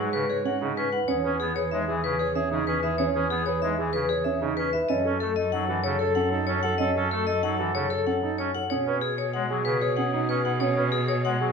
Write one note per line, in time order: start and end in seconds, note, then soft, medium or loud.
0.00 0.98 G#2 medium
0.00 0.18 G#4 medium
0.12 0.25 C#3 medium
0.12 0.24 F#4 medium
0.12 0.34 B4 medium
0.28 0.40 F#4 soft
0.28 0.50 G#4 medium
0.28 0.50 C#5 medium
0.45 0.65 C#4 medium
0.45 0.56 F#4 soft
0.45 0.66 F#5 medium
0.60 0.73 C#3 medium
0.60 0.81 D#4 medium
0.60 0.72 F#4 soft
0.77 0.89 C#4 medium
0.77 0.88 F#4 soft
0.77 0.97 B4 medium
0.92 1.13 B4 medium
0.92 1.13 F#5 medium
1.08 4.79 E2 medium
1.08 1.29 C#4 medium
1.08 1.19 G#4 soft
1.08 1.29 C#5 medium
1.24 1.36 C#4 medium
1.24 1.35 G#4 soft
1.24 1.45 B4 medium
1.39 1.52 B3 medium
1.39 1.51 G#4 soft
1.39 1.60 G#4 medium
1.56 1.67 G#4 medium
1.56 1.76 B4 medium
1.56 1.76 C#5 medium
1.71 1.84 G#3 medium
1.71 1.92 D#4 medium
1.71 1.83 G#4 medium
1.71 1.92 E5 medium
1.87 2.00 E3 medium
1.87 1.98 G#4 medium
1.87 2.08 G#4 medium
2.03 2.16 C#3 medium
2.03 2.14 G#4 medium
2.03 2.24 B4 medium
2.18 2.30 G#4 medium
2.18 2.40 G#4 medium
2.18 2.40 C#5 medium
2.35 2.56 C#4 medium
2.35 2.46 G#4 medium
2.35 2.56 E5 medium
2.51 2.63 C#3 medium
2.51 2.72 D#4 medium
2.51 2.62 G#4 medium
2.67 2.79 C#4 medium
2.67 2.78 G#4 medium
2.67 2.88 B4 medium
2.82 2.94 G#4 medium
2.82 3.04 B4 medium
2.82 3.03 E5 medium
2.98 3.19 C#4 medium
2.98 3.09 G#4 medium
2.98 3.19 C#5 medium
3.14 3.27 C#4 medium
3.14 3.26 G#4 medium
3.14 3.35 B4 medium
3.30 3.42 B3 medium
3.30 3.41 G#4 medium
3.30 3.51 G#4 medium
3.46 3.57 G#4 medium
3.46 3.67 B4 medium
3.46 3.67 C#5 medium
3.62 3.74 G#3 medium
3.62 3.83 D#4 medium
3.62 3.73 G#4 medium
3.62 3.83 E5 medium
3.78 3.90 E3 medium
3.78 3.99 G#4 medium
3.78 3.89 G#4 medium
3.93 4.06 C#3 medium
3.93 4.05 G#4 medium
3.93 4.14 B4 medium
4.09 4.30 G#4 medium
4.09 4.21 G#4 medium
4.09 4.30 C#5 medium
4.24 4.46 C#4 medium
4.24 4.37 G#4 soft
4.24 4.46 E5 medium
4.41 4.53 C#3 medium
4.41 4.62 D#4 medium
4.41 4.53 G#4 soft
4.57 4.69 C#4 medium
4.57 4.69 G#4 soft
4.57 4.78 B4 medium
4.73 4.94 B4 medium
4.73 4.94 E5 medium
4.88 8.60 F#2 medium
4.88 5.10 C#4 medium
4.88 5.00 A4 soft
4.88 5.10 D#5 medium
5.05 5.17 C#4 medium
5.05 5.16 A4 soft
5.05 5.26 A4 medium
5.20 5.33 A3 medium
5.20 5.41 A4 medium
5.20 5.32 A4 soft
5.36 5.48 A4 medium
5.36 5.57 D#5 medium
5.52 5.65 F#3 medium
5.52 5.73 D#4 medium
5.52 5.64 A4 soft
5.52 5.73 F#5 medium
5.68 5.80 E3 medium
5.68 5.89 F#4 medium
5.68 5.80 A4 medium
5.84 5.96 C#3 medium
5.84 5.96 A4 medium
5.84 6.05 C#5 medium
5.99 6.20 A4 medium
5.99 6.11 A4 medium
5.99 6.21 C#5 medium
6.15 6.37 C#4 medium
6.15 6.27 A4 medium
6.15 6.36 F#5 medium
6.32 6.53 D#4 medium
6.32 6.43 A4 medium
6.47 6.60 C#4 medium
6.47 6.59 A4 medium
6.47 6.68 C#5 medium
6.63 6.75 A4 medium
6.63 6.84 A4 medium
6.63 6.84 F#5 medium
6.78 7.00 C#4 medium
6.78 6.91 A4 medium
6.78 7.00 D#5 medium
6.95 7.08 C#4 medium
6.95 7.16 A4 medium
6.95 7.07 A4 medium
7.11 7.23 A3 medium
7.11 7.32 A4 medium
7.11 7.23 A4 medium
7.27 7.38 A4 medium
7.27 7.48 D#5 medium
7.43 7.55 F#3 medium
7.43 7.64 D#4 medium
7.43 7.54 A4 medium
7.43 7.64 F#5 medium
7.59 7.71 E3 medium
7.59 7.80 F#4 medium
7.59 7.70 A4 medium
7.75 7.87 C#3 medium
7.75 7.86 A4 medium
7.75 7.95 C#5 medium
7.90 8.11 A4 medium
7.90 8.02 A4 medium
7.90 8.11 C#5 medium
8.07 8.27 C#4 medium
8.07 8.18 A4 medium
8.07 8.27 F#5 medium
8.23 8.43 D#4 medium
8.23 8.34 A4 soft
8.38 8.50 C#4 medium
8.38 8.49 A4 soft
8.38 8.59 C#5 medium
8.55 8.75 A4 medium
8.55 8.75 F#5 medium
8.70 11.52 B2 medium
8.70 8.91 C#4 medium
8.70 8.81 G#4 soft
8.70 8.91 C#5 medium
8.86 8.98 C#4 medium
8.86 8.97 G#4 soft
8.86 9.07 B4 medium
9.02 9.22 G#4 medium
9.02 9.13 G#4 medium
9.18 9.29 G#4 medium
9.18 9.38 C#5 medium
9.33 9.46 G#3 medium
9.33 9.44 G#4 medium
9.33 9.54 F#5 medium
9.49 9.62 F#3 medium
9.49 9.61 G#4 medium
9.49 9.70 G#4 medium
9.65 9.78 C#3 medium
9.65 9.77 G#4 medium
9.65 9.86 B4 medium
9.82 10.02 G#4 medium
9.82 9.93 G#4 medium
9.82 10.02 C#5 medium
9.96 10.18 C#4 medium
9.96 10.08 G#4 medium
9.96 10.17 F#5 medium
10.13 10.34 D#4 medium
10.13 10.24 G#4 medium
10.29 10.41 C#4 medium
10.29 10.40 G#4 medium
10.29 10.49 B4 medium
10.45 10.56 G#4 medium
10.45 10.65 B4 medium
10.45 10.65 F#5 medium
10.60 10.81 C#4 medium
10.60 10.71 G#4 medium
10.60 10.81 C#5 medium
10.76 10.88 C#4 medium
10.76 10.87 G#4 medium
10.76 10.97 B4 medium
10.92 11.03 G#4 medium
10.92 11.13 G#4 medium
11.08 11.19 G#4 medium
11.08 11.29 C#5 medium
11.24 11.36 G#3 medium
11.24 11.35 G#4 medium
11.24 11.45 F#5 medium
11.40 11.52 F#3 medium
11.40 11.51 G#4 medium
11.40 11.52 G#4 medium